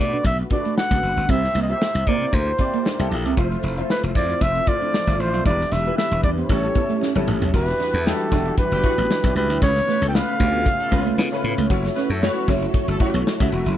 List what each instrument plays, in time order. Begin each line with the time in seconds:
Already playing: grand piano A3
0.00 slap bass B2, clean electric guitar A3, grand piano D4 F#4 B4, flugelhorn D5
0.13 clean electric guitar D4, closed hi-hat
0.24 slap bass B1, flugelhorn E5, kick, closed hi-hat
0.39 closed hi-hat
0.50 grand piano A3 D4 F#4 B4, clean electric guitar D4, flugelhorn D5, kick, closed hi-hat
0.65 clean electric guitar A3, closed hi-hat
0.78 flugelhorn F#5, snare
0.90 slap bass C#2, grand piano A3 D4 F#4 B4, clean electric guitar B3, kick, snare, closed hi-hat
1.03 slap bass F#1, muted clean electric guitar stroke, open hi-hat
1.17 slap bass G1, clean electric guitar D4, closed hi-hat
1.28 slap bass C2, grand piano A#3 E4 G4 C5, clean electric guitar C4, flugelhorn E5, kick, closed hi-hat
1.43 muted clean electric guitar stroke, snare, closed hi-hat
1.55 slap bass C2, clean electric guitar A#3, snare, closed hi-hat
1.62 flugelhorn D#5
1.69 grand piano A#3 E4 G4 C5, flugelhorn E5, closed hi-hat
1.82 muted clean electric guitar stroke, snare
1.95 slap bass C2, closed hi-hat
2.07 slap bass C3, grand piano A#3 E4 G4 C5, clean electric guitar A#3, flugelhorn D5, kick, closed hi-hat
2.21 clean electric guitar C4, closed hi-hat
2.33 slap bass D2, flugelhorn C5, muted clean electric guitar stroke, kick, closed hi-hat
2.47 closed hi-hat
2.58 grand piano A#3 E4 G4 D5, clean electric guitar C4, kick, closed hi-hat
2.74 clean electric guitar A#3, closed hi-hat
2.85 clean electric guitar D4, snare
2.98 slap bass C2, grand piano A#3 E4 G4 A4, closed hi-hat
3.11 slap bass A#1, muted clean electric guitar stroke, open hi-hat
3.25 slap bass C2, clean electric guitar C4, closed hi-hat
3.37 slap bass F1, string machine F3 C4 A4 E5, grand piano A3 E4 F4 C5, clean electric guitar F4, kick, closed hi-hat
3.52 muted clean electric guitar stroke, closed hi-hat
3.63 slap bass F1, clean electric guitar E4, closed hi-hat
3.77 grand piano A3 E4 F4 C5, closed hi-hat
3.89 flugelhorn B4, muted clean electric guitar stroke, snare
4.03 slap bass F1, closed hi-hat
4.15 slap bass F2, grand piano A3 E4 F4 C5, clean electric guitar E4, flugelhorn D5, kick, closed hi-hat
4.30 clean electric guitar F4, closed hi-hat
4.41 slap bass F1, flugelhorn E5, muted clean electric guitar stroke, kick, closed hi-hat
4.55 closed hi-hat
4.67 grand piano A3 E4 F4 C5, clean electric guitar F4, flugelhorn D5, kick, closed hi-hat
4.82 clean electric guitar D4, closed hi-hat
4.94 snare
5.07 slap bass G1, grand piano A3 E4 F4 D5, clean electric guitar E4, kick, snare, closed hi-hat
5.20 slap bass A1, flugelhorn C5, muted clean electric guitar stroke, open hi-hat
5.34 slap bass B1, clean electric guitar F4, closed hi-hat
5.45 slap bass E1, string machine E3 B3 D4 G4, grand piano G3 D4 E4 B4, clean electric guitar E4, flugelhorn D5, kick, closed hi-hat
5.60 muted clean electric guitar stroke, snare, closed hi-hat
5.72 slap bass E1, clean electric guitar D4, flugelhorn E5, snare, closed hi-hat
5.86 grand piano G3 D4 E4 B4, closed hi-hat
5.98 flugelhorn E5, muted clean electric guitar stroke, snare
6.11 slap bass E1, closed hi-hat
6.23 slap bass E2, grand piano G3 D4 E4 B4, clean electric guitar D4, flugelhorn D5, kick, closed hi-hat
6.38 clean electric guitar B3, flugelhorn C#5, closed hi-hat
6.49 slap bass A1, grand piano G3 C#4 E4 A4, string machine A3 C#4 G4, kick, closed hi-hat
6.63 closed hi-hat
6.75 grand piano G3 C#4 E4 A4, clean electric guitar B3, kick, closed hi-hat
6.89 clean electric guitar A3, closed hi-hat
7.01 clean electric guitar C#4, snare
7.15 slap bass G1, grand piano G3 C#4 E4 A4, high tom
7.27 slap bass A1, muted clean electric guitar stroke, mid tom
7.41 slap bass B1, clean electric guitar B3, floor tom
7.53 slap bass E1, string machine E3 G3 D4 F#5, grand piano D4 E4 F#4 G4, clean electric guitar E4, flugelhorn B4, kick, crash
7.68 muted clean electric guitar stroke, snare, closed hi-hat
7.80 horn section B3 B4, clean electric guitar D4, snare, closed hi-hat
7.94 slap bass E2, horn section A3 A4, closed hi-hat
8.05 grand piano F#3 D4 E4 G4, horn section B3 B4, flugelhorn A4, muted clean electric guitar stroke, snare
8.20 closed hi-hat
8.32 slap bass E1, clean electric guitar D4, grand piano D4 E4 F#4 G4, kick, snare, closed hi-hat
8.46 clean electric guitar E4, closed hi-hat
8.58 flugelhorn B4, muted clean electric guitar stroke, kick, closed hi-hat
8.72 slap bass F#1, horn section G3 G4, closed hi-hat
8.83 horn section F#3 F#4, grand piano F#3 D4 E4 G4, clean electric guitar E4, kick, closed hi-hat
8.98 slap bass A1, clean electric guitar B3, closed hi-hat
9.11 snare
9.24 slap bass B1, grand piano F#3 D4 E4 G4, clean electric guitar D4, kick, snare, closed hi-hat
9.35 slap bass C#2, flugelhorn B4, muted clean electric guitar stroke, open hi-hat
9.50 slap bass D2, clean electric guitar E4, closed hi-hat
9.61 slap bass C#2, string machine C#3 A3 B3 F4, grand piano A3 C#4 F4 B4, clean electric guitar C#4, flugelhorn C#5, kick, closed hi-hat
9.76 muted clean electric guitar stroke, snare, closed hi-hat
9.87 clean electric guitar A3, horn section B3 B4, snare, closed hi-hat
10.01 slap bass C#2, horn section A3 A4, closed hi-hat
10.08 flugelhorn G5
10.13 grand piano A3 C#4 F4 B4, horn section B3 B4, flugelhorn F5, muted clean electric guitar stroke, snare
10.29 closed hi-hat
10.40 slap bass D2, clean electric guitar A3, grand piano A3 C#4 F4 G4, kick, closed hi-hat
10.54 clean electric guitar B3, closed hi-hat
10.66 muted clean electric guitar stroke, kick, closed hi-hat
10.79 horn section A3 A4, closed hi-hat
10.91 slap bass C#2, horn section F3 F4, grand piano A3 C#4 F4 B4, clean electric guitar B3, kick, closed hi-hat
11.06 clean electric guitar A3, closed hi-hat
11.18 slap bass C#3, clean electric guitar B3, snare
11.32 grand piano A3 C#4 F4 B4, snare, closed hi-hat
11.44 slap bass A2, muted clean electric guitar stroke, open hi-hat
11.58 slap bass C#2, clean electric guitar A3, closed hi-hat
11.69 slap bass F#1, string machine F#3 C#4 A4, grand piano A3 E4 F#4 C#5, clean electric guitar F#4, kick, closed hi-hat
11.84 muted clean electric guitar stroke, snare, closed hi-hat
11.96 horn section B3 B4, clean electric guitar C#4, snare, closed hi-hat
12.10 slap bass F#2, horn section A3 A4, closed hi-hat
12.22 grand piano A3 E4 F#4 C#5, horn section B3 B4, muted clean electric guitar stroke, snare
12.37 closed hi-hat
12.48 slap bass F#1, grand piano A3 E4 F#4 C#5, clean electric guitar C#4, kick, snare, closed hi-hat
12.62 clean electric guitar E4, closed hi-hat
12.74 muted clean electric guitar stroke, kick, closed hi-hat
12.88 slap bass G1, horn section A3 A4, closed hi-hat
13.00 horn section F#3 F#4, grand piano A3 E4 F#4 C#5, clean electric guitar E4, kick, closed hi-hat
13.14 slap bass B1, clean electric guitar B3, closed hi-hat
13.27 snare
13.40 slap bass C#2, grand piano A3 E4 F#4 E5, clean electric guitar C#4, kick, snare, closed hi-hat
13.52 slap bass E1, muted clean electric guitar stroke, open hi-hat
13.66 slap bass F#1, clean electric guitar E4, closed hi-hat